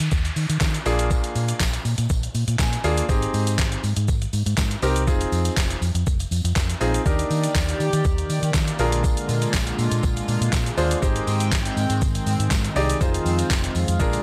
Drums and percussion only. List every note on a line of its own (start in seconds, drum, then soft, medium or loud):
0.00 closed hi-hat medium
0.00 tambourine soft
0.00 shaker medium
0.11 kick loud
0.11 tambourine soft
0.11 shaker medium
0.24 closed hi-hat soft
0.24 tambourine soft
0.24 shaker soft
0.36 open hi-hat medium
0.36 tambourine medium
0.36 shaker medium
0.50 closed hi-hat medium
0.50 tambourine soft
0.50 shaker medium
0.61 kick loud
0.61 snare medium
0.61 clap loud
0.61 tambourine medium
0.61 shaker medium
0.74 closed hi-hat medium
0.74 shaker medium
0.86 open hi-hat medium
0.86 tambourine medium
0.86 shaker medium
0.99 closed hi-hat medium
0.99 shaker medium
1.11 kick loud
1.11 tambourine soft
1.11 shaker medium
1.24 closed hi-hat medium
1.24 shaker medium
1.35 open hi-hat medium
1.35 tambourine soft
1.35 shaker medium
1.48 closed hi-hat medium
1.48 shaker medium
1.60 kick loud
1.60 snare medium
1.60 clap loud
1.60 tambourine medium
1.60 shaker medium
1.73 closed hi-hat medium
1.73 shaker medium
1.85 open hi-hat medium
1.85 tambourine medium
1.85 shaker soft
1.98 closed hi-hat medium
1.98 tambourine soft
1.98 shaker medium
2.10 kick loud
2.10 tambourine soft
2.10 shaker medium
2.23 closed hi-hat soft
2.23 shaker medium
2.34 open hi-hat medium
2.34 tambourine medium
2.34 shaker medium
2.48 closed hi-hat medium
2.48 shaker medium
2.59 kick loud
2.59 snare medium
2.59 clap loud
2.59 tambourine medium
2.59 shaker medium
2.73 closed hi-hat medium
2.73 shaker medium
2.84 open hi-hat medium
2.84 tambourine medium
2.84 shaker medium
2.97 closed hi-hat medium
2.97 shaker medium
3.09 kick loud
3.09 tambourine medium
3.09 shaker medium
3.22 closed hi-hat medium
3.22 shaker medium
3.34 open hi-hat medium
3.34 tambourine soft
3.34 shaker medium
3.47 closed hi-hat medium
3.47 tambourine soft
3.47 shaker medium
3.58 kick loud
3.58 snare medium
3.58 clap loud
3.58 tambourine medium
3.58 shaker medium
3.72 closed hi-hat medium
3.72 shaker medium
3.83 open hi-hat medium
3.83 tambourine medium
3.83 shaker soft
3.96 closed hi-hat medium
3.96 shaker medium
4.08 kick loud
4.08 tambourine soft
4.08 shaker medium
4.22 closed hi-hat medium
4.22 shaker soft
4.33 open hi-hat medium
4.33 tambourine medium
4.33 shaker medium
4.46 closed hi-hat medium
4.46 tambourine soft
4.46 shaker medium
4.58 kick loud
4.58 snare medium
4.58 clap loud
4.58 tambourine medium
4.58 shaker medium
4.71 closed hi-hat medium
4.71 shaker medium
4.82 open hi-hat medium
4.82 tambourine medium
4.82 shaker medium
4.96 closed hi-hat medium
4.96 shaker medium
5.07 kick loud
5.07 tambourine medium
5.07 shaker medium
5.21 closed hi-hat medium
5.21 shaker medium
5.32 open hi-hat medium
5.32 tambourine soft
5.32 shaker medium
5.45 closed hi-hat medium
5.45 tambourine soft
5.45 shaker medium
5.57 kick loud
5.57 snare medium
5.57 clap loud
5.57 tambourine medium
5.57 shaker medium
5.70 closed hi-hat medium
5.70 shaker medium
5.82 open hi-hat medium
5.82 tambourine medium
5.82 shaker soft
5.95 closed hi-hat medium
5.95 shaker medium
6.06 kick loud
6.06 tambourine soft
6.06 shaker medium
6.19 closed hi-hat soft
6.19 tambourine soft
6.19 shaker medium
6.31 open hi-hat medium
6.31 tambourine medium
6.31 shaker medium
6.45 closed hi-hat medium
6.45 tambourine soft
6.45 shaker medium
6.56 kick loud
6.56 snare medium
6.56 clap loud
6.56 tambourine medium
6.56 shaker medium
6.70 closed hi-hat medium
6.70 shaker medium
6.81 open hi-hat medium
6.81 tambourine medium
6.81 shaker medium
6.94 closed hi-hat medium
6.94 shaker medium
7.06 kick loud
7.06 tambourine soft
7.06 shaker medium
7.19 closed hi-hat medium
7.19 shaker medium
7.30 open hi-hat medium
7.30 tambourine soft
7.30 shaker medium
7.44 closed hi-hat medium
7.44 tambourine soft
7.44 shaker medium
7.55 kick loud
7.55 snare medium
7.55 clap loud
7.55 tambourine medium
7.55 shaker medium
7.69 closed hi-hat medium
7.69 shaker medium
7.80 open hi-hat medium
7.80 tambourine medium
7.80 shaker medium
7.93 closed hi-hat medium
7.93 tambourine soft
7.93 shaker medium
8.05 kick loud
8.05 tambourine soft
8.05 shaker medium
8.18 closed hi-hat medium
8.18 shaker medium
8.30 open hi-hat medium
8.30 tambourine medium
8.30 shaker medium
8.43 closed hi-hat medium
8.43 tambourine soft
8.43 shaker medium
8.54 kick loud
8.54 snare medium
8.54 clap loud
8.54 tambourine medium
8.54 shaker medium
8.68 closed hi-hat medium
8.68 shaker medium
8.79 open hi-hat medium
8.79 tambourine medium
8.79 shaker medium
8.92 closed hi-hat medium
8.92 shaker medium
9.04 kick loud
9.04 tambourine medium
9.04 shaker medium
9.17 closed hi-hat medium
9.17 shaker medium
9.29 open hi-hat medium
9.29 tambourine soft
9.29 shaker medium
9.42 closed hi-hat medium
9.42 tambourine soft
9.42 shaker medium
9.53 kick loud
9.53 snare medium
9.53 clap loud
9.53 tambourine medium
9.53 shaker medium
9.67 closed hi-hat medium
9.67 shaker medium
9.79 open hi-hat medium
9.79 tambourine medium
9.79 shaker soft
9.92 closed hi-hat medium
9.92 tambourine soft
9.92 shaker medium
10.03 kick loud
10.03 tambourine soft
10.03 shaker medium
10.16 closed hi-hat medium
10.16 tambourine soft
10.16 shaker soft
10.28 open hi-hat medium
10.28 tambourine medium
10.28 shaker medium
10.42 closed hi-hat medium
10.42 shaker medium
10.53 kick loud
10.53 snare medium
10.53 clap loud
10.53 tambourine medium
10.53 shaker medium
10.66 closed hi-hat medium
10.66 shaker medium
10.78 open hi-hat medium
10.78 tambourine medium
10.78 shaker medium
10.91 closed hi-hat medium
10.91 shaker medium
11.02 kick loud
11.02 tambourine soft
11.02 shaker medium
11.16 closed hi-hat medium
11.16 shaker medium
11.27 open hi-hat medium
11.27 tambourine soft
11.27 shaker medium
11.40 closed hi-hat medium
11.40 shaker medium
11.52 kick loud
11.52 snare medium
11.52 clap loud
11.52 tambourine medium
11.52 shaker medium
11.65 closed hi-hat medium
11.65 shaker medium
11.77 open hi-hat medium
11.77 tambourine medium
11.77 shaker soft
11.90 closed hi-hat medium
11.90 tambourine soft
11.90 shaker medium
12.02 kick loud
12.02 tambourine soft
12.02 shaker medium
12.15 closed hi-hat medium
12.15 tambourine soft
12.15 shaker medium
12.26 open hi-hat medium
12.26 tambourine medium
12.26 shaker medium
12.40 closed hi-hat medium
12.40 shaker medium
12.51 kick loud
12.51 snare medium
12.51 clap loud
12.51 tambourine medium
12.51 shaker medium
12.65 closed hi-hat medium
12.65 shaker medium
12.76 open hi-hat medium
12.76 tambourine medium
12.76 shaker medium
12.90 closed hi-hat medium
12.90 shaker medium
13.01 kick loud
13.01 tambourine medium
13.01 shaker medium
13.14 closed hi-hat medium
13.14 shaker medium
13.26 open hi-hat medium
13.26 tambourine soft
13.26 shaker medium
13.38 closed hi-hat medium
13.38 tambourine soft
13.38 shaker medium
13.50 kick loud
13.50 snare medium
13.50 clap loud
13.50 tambourine medium
13.50 shaker medium
13.64 closed hi-hat medium
13.64 shaker medium
13.75 open hi-hat medium
13.75 tambourine medium
13.75 shaker soft
13.88 closed hi-hat medium
13.88 tambourine soft
13.88 shaker medium
14.00 kick loud
14.00 tambourine soft
14.00 shaker medium
14.13 closed hi-hat soft
14.13 tambourine soft
14.13 shaker medium